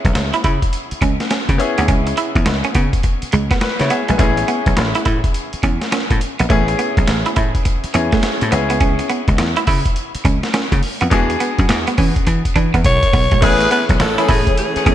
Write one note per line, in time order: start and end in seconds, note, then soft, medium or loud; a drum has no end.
0.00 1.55 B3 medium
0.00 1.55 C#4 medium
0.00 1.56 E4 medium
0.00 1.56 G#4 medium
0.05 0.13 B1 medium
0.05 kick medium
0.05 closed hi-hat soft
0.15 0.30 C#2 loud
0.15 muted clean electric guitar stroke soft
0.15 snare loud
0.15 closed hi-hat medium
0.33 0.40 E4 medium
0.33 closed hi-hat soft
0.44 0.59 C#3 loud
0.44 0.55 E4 medium
0.44 kick medium
0.44 closed hi-hat medium
0.62 kick medium
0.62 closed hi-hat medium
0.73 closed hi-hat medium
0.91 muted slap bass stroke soft
0.91 closed hi-hat medium
1.01 1.17 C#2 medium
1.01 1.13 C#4 medium
1.01 kick medium
1.01 closed hi-hat medium
1.20 snare medium
1.20 closed hi-hat soft
1.31 1.42 C#4 medium
1.31 snare loud
1.31 closed hi-hat medium
1.49 1.58 C#3 loud
1.49 muted clean electric guitar stroke soft
1.49 kick medium
1.49 closed hi-hat medium
1.58 3.86 B3 medium
1.58 3.86 C#4 medium
1.58 3.29 E4 medium
1.58 3.30 G#4 medium
1.58 closed hi-hat medium
1.78 1.87 D2 medium
1.78 1.84 B3 medium
1.78 closed hi-hat medium
1.88 2.12 C#2 loud
1.88 2.00 C#4 medium
1.88 kick loud
1.88 closed hi-hat medium
2.07 muted clean electric guitar stroke soft
2.07 closed hi-hat medium
2.17 2.29 E4 medium
2.17 closed hi-hat medium
2.35 2.44 E2 medium
2.35 kick medium
2.35 closed hi-hat soft
2.46 2.61 C#2 loud
2.46 muted clean electric guitar stroke soft
2.46 snare loud
2.46 closed hi-hat medium
2.64 2.71 C#4 medium
2.64 closed hi-hat soft
2.75 2.90 C#3 loud
2.75 2.86 B3 medium
2.75 kick medium
2.75 closed hi-hat medium
2.93 kick medium
2.93 closed hi-hat medium
3.03 muted clean electric guitar stroke soft
3.03 kick medium
3.03 closed hi-hat medium
3.22 muted slap bass stroke soft
3.22 closed hi-hat medium
3.32 3.48 C#2 medium
3.32 3.44 G#3 medium
3.32 closed hi-hat medium
3.51 3.58 B3 medium
3.51 kick loud
3.51 snare medium
3.51 closed hi-hat soft
3.61 3.79 B4 medium
3.61 muted clean electric guitar stroke soft
3.61 snare loud
3.61 closed hi-hat medium
3.79 3.89 C#3 loud
3.79 3.90 E4 medium
3.79 3.90 C#5 medium
3.79 snare medium
3.79 closed hi-hat medium
3.90 4.02 B3 medium
3.90 4.08 G#4 medium
3.90 4.08 E5 medium
3.90 closed hi-hat medium
4.08 4.18 A#1 medium
4.08 4.15 G#3 medium
4.08 4.36 B4 soft
4.08 4.36 G#5 medium
4.08 closed hi-hat medium
4.18 4.43 A1 loud
4.18 4.30 A3 medium
4.18 6.45 B3 medium
4.18 6.46 C#4 medium
4.18 6.46 E4 medium
4.18 6.47 G#4 medium
4.18 kick loud
4.18 closed hi-hat medium
4.37 muted clean electric guitar stroke soft
4.37 closed hi-hat medium
4.48 4.59 B3 medium
4.48 closed hi-hat medium
4.66 4.75 B1 medium
4.66 kick medium
4.66 closed hi-hat soft
4.77 4.92 A1 medium
4.77 muted clean electric guitar stroke soft
4.77 snare loud
4.77 closed hi-hat medium
4.95 5.02 E4 medium
4.95 closed hi-hat medium
5.05 5.21 A2 medium
5.05 5.17 E4 medium
5.05 kick medium
5.05 closed hi-hat medium
5.24 kick medium
5.24 closed hi-hat medium
5.34 closed hi-hat medium
5.53 muted slap bass stroke soft
5.53 closed hi-hat medium
5.63 5.78 E2 medium
5.63 5.75 C#4 medium
5.63 kick medium
5.63 closed hi-hat medium
5.81 snare medium
5.81 closed hi-hat soft
5.92 6.03 C#4 medium
5.92 snare loud
5.92 closed hi-hat medium
6.11 6.19 A2 loud
6.11 muted clean electric guitar stroke soft
6.11 kick medium
6.11 closed hi-hat medium
6.21 closed hi-hat medium
6.39 6.48 A#1 medium
6.39 6.46 B3 medium
6.39 closed hi-hat medium
6.49 6.74 A1 medium
6.49 6.61 A3 medium
6.49 7.91 B3 medium
6.49 7.91 C#4 medium
6.49 7.92 E4 medium
6.49 7.92 G#4 medium
6.49 kick loud
6.49 closed hi-hat medium
6.68 muted clean electric guitar stroke soft
6.68 closed hi-hat soft
6.79 6.90 B3 medium
6.79 closed hi-hat medium
6.97 7.06 B1 medium
6.97 kick medium
6.97 closed hi-hat medium
7.07 7.23 A1 medium
7.07 muted clean electric guitar stroke soft
7.07 snare loud
7.07 closed hi-hat medium
7.26 7.32 E4 medium
7.26 closed hi-hat medium
7.36 7.52 A2 loud
7.36 7.48 E4 medium
7.36 kick medium
7.36 closed hi-hat medium
7.55 kick medium
7.55 closed hi-hat medium
7.65 muted clean electric guitar stroke soft
7.65 kick medium
7.65 closed hi-hat medium
7.84 muted slap bass stroke soft
7.84 closed hi-hat medium
7.94 8.09 E2 medium
7.94 8.49 B3 medium
7.94 8.50 C#4 medium
7.94 8.05 C#4 medium
7.94 8.51 E4 medium
7.94 8.52 G#4 medium
7.94 closed hi-hat medium
8.12 8.19 A3 medium
8.12 kick loud
8.12 snare medium
8.12 closed hi-hat soft
8.23 muted clean electric guitar stroke soft
8.23 snare loud
8.23 closed hi-hat medium
8.41 8.50 A2 loud
8.41 closed hi-hat medium
8.51 8.99 C#2 loud
8.51 10.78 B3 medium
8.51 8.63 B3 medium
8.51 10.79 C#4 medium
8.51 10.79 E4 medium
8.51 10.79 G#4 medium
8.51 closed hi-hat medium
8.70 8.77 B3 medium
8.70 closed hi-hat medium
8.81 8.92 C#4 medium
8.81 kick loud
8.81 closed hi-hat medium
8.99 muted clean electric guitar stroke soft
8.99 closed hi-hat medium
9.09 9.21 B3 medium
9.09 closed hi-hat medium
9.28 9.37 C#2 medium
9.28 kick medium
9.28 closed hi-hat soft
9.38 9.53 E2 loud
9.38 muted clean electric guitar stroke soft
9.38 snare loud
9.38 closed hi-hat medium
9.56 9.63 E4 medium
9.56 closed hi-hat medium
9.67 9.82 C#3 loud
9.67 9.78 E4 medium
9.67 kick medium
9.67 open hi-hat medium
9.86 kick medium
9.86 closed hi-hat medium
9.96 closed hi-hat medium
10.15 muted slap bass stroke soft
10.15 closed hi-hat medium
10.25 10.40 C#2 medium
10.25 10.36 C#4 medium
10.25 kick medium
10.25 closed hi-hat medium
10.43 snare medium
10.43 closed hi-hat soft
10.54 10.65 C#4 medium
10.54 snare loud
10.54 closed hi-hat medium
10.72 10.81 C#3 medium
10.72 muted clean electric guitar stroke soft
10.72 kick medium
10.72 closed hi-hat medium
10.83 open hi-hat medium
11.01 11.10 F2 medium
11.01 11.07 B3 medium
11.01 closed hi-hat medium
11.10 11.35 E2 loud
11.10 11.23 G#3 medium
11.10 13.38 B3 medium
11.10 13.38 D4 medium
11.10 13.38 F#4 medium
11.10 13.39 G#4 medium
11.10 kick loud
11.10 closed hi-hat medium
11.30 muted clean electric guitar stroke soft
11.30 closed hi-hat medium
11.40 11.51 B3 medium
11.40 closed hi-hat medium
11.59 11.67 F#2 medium
11.59 kick medium
11.59 closed hi-hat medium
11.69 11.84 E2 medium
11.69 muted clean electric guitar stroke soft
11.69 snare loud
11.69 closed hi-hat medium
11.87 11.94 B3 medium
11.87 closed hi-hat soft
11.98 12.13 E3 medium
11.98 12.09 C#4 medium
11.98 kick medium
11.98 open hi-hat medium
12.16 kick medium
12.16 closed hi-hat medium
12.27 12.42 E3 loud
12.27 muted clean electric guitar stroke soft
12.27 kick medium
12.27 closed hi-hat medium
12.45 kick medium
12.45 closed hi-hat medium
12.56 12.71 E3 medium
12.56 12.67 D4 medium
12.56 kick medium
12.56 closed hi-hat medium
12.74 12.83 E2 medium
12.74 12.80 B3 medium
12.74 kick medium
12.74 closed hi-hat soft
12.84 13.00 B1 medium
12.84 13.44 C#5 loud
12.84 muted clean electric guitar stroke soft
12.84 kick medium
12.84 closed hi-hat medium
13.03 kick medium
13.03 closed hi-hat medium
13.13 13.28 B1 medium
13.13 13.24 B3 medium
13.13 kick loud
13.13 open hi-hat medium
13.31 13.40 A#1 medium
13.31 13.38 G#3 medium
13.31 kick medium
13.31 closed hi-hat medium
13.41 13.66 A1 loud
13.41 14.95 E3 medium
13.41 13.69 A3 loud
13.41 14.95 A3 medium
13.41 13.53 A3 medium
13.41 14.95 B3 medium
13.41 13.69 B3 medium
13.41 14.95 C#4 medium
13.41 13.69 C#4 medium
13.41 14.95 C#4 medium
13.41 14.95 E4 medium
13.41 13.70 G#4 loud
13.41 14.95 G#4 medium
13.41 13.71 B4 loud
13.41 kick loud
13.41 closed hi-hat medium
13.41 crash medium
13.60 muted clean electric guitar stroke soft
13.60 closed hi-hat medium
13.71 13.82 B3 medium
13.71 13.85 B4 loud
13.71 closed hi-hat medium
13.89 13.98 B1 medium
13.89 kick medium
13.89 closed hi-hat medium
14.00 14.15 A1 loud
14.00 14.31 A4 medium
14.00 muted clean electric guitar stroke soft
14.00 snare loud
14.00 closed hi-hat medium
14.18 14.30 A3 medium
14.18 14.30 B3 medium
14.18 14.30 C#4 medium
14.18 14.25 E4 medium
14.18 14.30 G#4 medium
14.18 closed hi-hat soft
14.28 14.44 A2 loud
14.28 14.40 E4 medium
14.28 14.58 G#4 medium
14.28 kick medium
14.28 open hi-hat medium
14.47 kick medium
14.47 closed hi-hat medium
14.57 14.95 G#4 medium
14.57 closed hi-hat medium
14.76 14.88 A3 medium
14.76 14.88 B3 medium
14.76 14.88 C#4 medium
14.76 14.88 G#4 medium
14.76 muted slap bass stroke soft
14.76 closed hi-hat medium
14.86 14.95 E2 medium
14.86 14.95 C#4 medium
14.86 kick medium
14.86 closed hi-hat medium